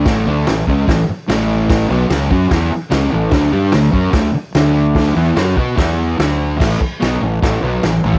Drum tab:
CC |----------------|----------------|----------------|----------------|
HH |o---o---o---o---|o---o---o---o---|o---o---o---o---|o---o---o---o---|
SD |o---o---o---o---|o---o---o---o---|o---o---o---o---|o---o---o---o---|
BD |o-----o-o-------|o-----o-o-------|o-----o-o-------|o-----o-o-------|

CC |x---------------|
HH |----o---o---o---|
SD |o---o---o---o---|
BD |o-o-----o------o|